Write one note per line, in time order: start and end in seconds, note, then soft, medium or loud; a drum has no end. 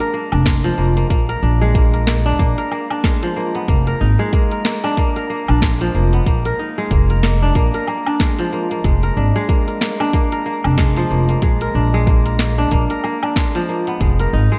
0.00 0.41 F3 loud
0.00 0.44 G#3 loud
0.00 0.13 A#3 loud
0.00 0.32 D4 loud
0.00 1.27 A#4 loud
0.00 closed hi-hat soft
0.14 0.77 A#3 medium
0.14 shaker medium
0.32 0.71 F1 medium
0.32 1.42 D4 medium
0.32 low woodblock medium
0.32 shaker soft
0.46 1.60 G#3 medium
0.46 kick loud
0.46 snare medium
0.46 closed hi-hat medium
0.46 shaker soft
0.64 2.44 F3 loud
0.64 closed hi-hat soft
0.78 1.02 F1 medium
0.78 0.96 A#3 medium
0.78 shaker medium
0.97 1.10 A#3 medium
0.97 closed hi-hat soft
0.97 shaker soft
1.10 1.34 A#1 medium
1.10 1.74 A#3 medium
1.10 kick loud
1.10 closed hi-hat medium
1.10 shaker soft
1.29 1.93 A#4 loud
1.29 closed hi-hat soft
1.43 2.33 A#1 loud
1.43 2.25 D4 medium
1.43 shaker medium
1.61 2.44 G#3 loud
1.61 shaker soft
1.75 2.07 A#3 medium
1.75 kick loud
1.75 closed hi-hat medium
1.75 shaker soft
1.94 2.57 A#4 medium
1.94 closed hi-hat soft
2.07 2.39 A#3 medium
2.07 snare medium
2.07 shaker medium
2.26 2.90 D4 loud
2.26 shaker soft
2.39 2.52 A#1 loud
2.39 2.71 A#3 loud
2.39 kick loud
2.39 closed hi-hat medium
2.39 shaker soft
2.58 3.61 A#4 loud
2.58 closed hi-hat soft
2.71 3.36 A#3 medium
2.71 low woodblock medium
2.71 shaker medium
2.90 4.07 D4 medium
2.90 low woodblock medium
2.90 shaker soft
3.04 4.18 G#3 medium
3.04 kick loud
3.04 snare medium
3.04 closed hi-hat medium
3.04 shaker soft
3.23 5.02 F3 medium
3.23 closed hi-hat soft
3.36 3.61 A#3 medium
3.36 shaker medium
3.55 3.74 B3 medium
3.55 closed hi-hat soft
3.55 shaker soft
3.68 3.92 F1 medium
3.68 4.32 A#3 medium
3.68 kick loud
3.68 closed hi-hat medium
3.68 shaker soft
3.87 4.51 A#4 loud
3.87 closed hi-hat soft
4.01 4.14 G#1 loud
4.01 4.90 D#4 medium
4.01 shaker medium
4.19 5.02 G#3 loud
4.19 shaker soft
4.33 4.65 A#3 medium
4.33 kick loud
4.33 closed hi-hat medium
4.33 shaker soft
4.51 5.16 A#4 medium
4.51 closed hi-hat soft
4.65 4.97 A#3 medium
4.65 snare medium
4.65 shaker medium
4.84 5.48 D4 loud
4.84 low woodblock medium
4.84 shaker soft
4.97 5.29 A#3 loud
4.97 kick loud
4.97 closed hi-hat medium
4.97 shaker soft
5.16 6.19 A#4 loud
5.16 closed hi-hat soft
5.30 5.94 A#3 medium
5.30 shaker medium
5.48 5.88 A#1 medium
5.48 6.65 D4 medium
5.48 low woodblock medium
5.48 shaker soft
5.62 6.77 G#3 medium
5.62 kick loud
5.62 snare medium
5.62 closed hi-hat medium
5.62 shaker soft
5.81 7.60 F3 loud
5.81 closed hi-hat soft
5.94 6.18 F1 medium
5.94 6.19 A#3 medium
5.94 shaker medium
6.13 6.33 B3 medium
6.13 closed hi-hat soft
6.13 shaker soft
6.26 6.50 A#1 medium
6.26 6.91 A#3 medium
6.26 kick loud
6.26 closed hi-hat medium
6.26 shaker soft
6.45 7.10 A#4 loud
6.45 closed hi-hat soft
6.59 7.48 D#4 medium
6.59 shaker medium
6.78 7.60 G#3 loud
6.78 shaker soft
6.91 7.49 F1 medium
6.91 7.23 A#3 medium
6.91 kick loud
6.91 closed hi-hat medium
6.91 shaker soft
7.10 7.74 A#4 medium
7.10 closed hi-hat soft
7.23 7.55 A#3 medium
7.23 snare medium
7.23 shaker medium
7.42 8.07 D4 loud
7.42 shaker soft
7.55 7.68 A#1 medium
7.55 7.87 A#3 loud
7.55 kick loud
7.55 closed hi-hat medium
7.55 shaker soft
7.74 9.02 A#4 loud
7.74 closed hi-hat soft
7.87 8.52 A#3 medium
7.87 low woodblock medium
7.87 shaker medium
8.06 9.16 D4 medium
8.06 low woodblock medium
8.06 shaker soft
8.20 8.83 G#3 medium
8.20 kick loud
8.20 snare medium
8.20 closed hi-hat medium
8.20 shaker soft
8.39 10.73 F3 medium
8.39 closed hi-hat soft
8.52 8.71 A#3 medium
8.52 shaker medium
8.71 9.49 A#3 medium
8.71 closed hi-hat soft
8.71 shaker soft
8.84 9.08 F1 medium
8.84 9.34 G#3 medium
8.84 kick loud
8.84 closed hi-hat medium
8.84 shaker soft
9.03 9.67 A#4 loud
9.03 closed hi-hat soft
9.17 9.30 G#1 medium
9.17 10.00 D4 medium
9.17 shaker medium
9.36 10.77 G#3 loud
9.36 shaker soft
9.49 9.81 A#3 medium
9.49 kick loud
9.49 closed hi-hat medium
9.49 shaker soft
9.68 10.32 A#4 medium
9.68 closed hi-hat soft
9.81 10.13 A#3 medium
9.81 snare medium
9.81 shaker medium
10.00 10.65 D4 loud
10.00 low woodblock medium
10.00 shaker soft
10.13 10.45 A#3 loud
10.13 kick loud
10.13 closed hi-hat medium
10.13 shaker soft
10.32 11.60 A#4 loud
10.32 closed hi-hat soft
10.46 11.10 A#3 medium
10.46 shaker medium
10.64 11.04 F1 medium
10.64 11.75 D4 medium
10.64 low woodblock medium
10.64 shaker soft
10.78 11.42 G#3 medium
10.78 kick medium
10.78 snare medium
10.78 closed hi-hat medium
10.78 shaker soft
10.96 12.77 F3 loud
10.96 closed hi-hat soft
11.10 11.34 F1 medium
11.10 11.29 A#3 medium
11.10 shaker medium
11.29 12.07 A#3 medium
11.29 closed hi-hat soft
11.29 shaker soft
11.42 11.66 A#1 medium
11.42 11.93 G#3 medium
11.42 kick loud
11.42 closed hi-hat medium
11.42 shaker soft
11.61 12.25 A#4 loud
11.61 closed hi-hat soft
11.75 12.65 A#1 medium
11.75 12.58 D4 medium
11.75 shaker medium
11.94 12.77 G#3 loud
11.94 shaker soft
12.07 12.39 A#3 medium
12.07 kick loud
12.07 closed hi-hat medium
12.07 shaker soft
12.26 12.90 A#4 medium
12.26 closed hi-hat soft
12.39 12.71 A#3 medium
12.39 snare medium
12.39 shaker medium
12.58 13.23 D4 loud
12.58 shaker soft
12.71 12.84 A#1 loud
12.71 13.04 A#3 loud
12.71 kick loud
12.71 closed hi-hat medium
12.71 shaker soft
12.90 13.94 A#4 loud
12.90 closed hi-hat soft
13.04 13.68 A#3 medium
13.04 low woodblock medium
13.04 shaker medium
13.23 14.39 D4 medium
13.23 low woodblock medium
13.23 shaker soft
13.36 14.00 G#3 medium
13.36 kick medium
13.36 snare medium
13.36 closed hi-hat medium
13.36 shaker soft
13.55 14.59 F3 loud
13.55 closed hi-hat soft
13.69 13.94 A#3 medium
13.69 shaker medium
13.87 14.26 B3 medium
13.87 closed hi-hat soft
13.87 shaker soft
14.01 14.24 F1 medium
14.01 14.51 G#3 medium
14.01 kick loud
14.01 closed hi-hat medium
14.01 shaker soft
14.20 14.59 A#4 loud
14.20 closed hi-hat soft
14.33 14.46 G#1 loud
14.33 14.59 D#4 medium
14.33 shaker medium
14.52 14.59 G#3 loud
14.52 shaker soft